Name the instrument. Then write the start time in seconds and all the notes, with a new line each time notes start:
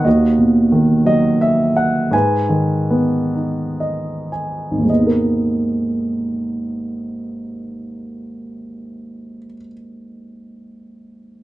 grand piano
0.05 D#2 F#4 D#5
0.39 B2
0.72 D#3
1.05 F#3 D#5
1.41 E5
1.77 F#5
2.11 G#2 B4 G#5
2.49 D#3
2.90 B3
3.35 D#4
3.80 D#5
4.32 G#5
4.71 G#1
4.78 D#2
4.85 G#3
4.90 B3 D#5
5.00 D#4
5.07 A#4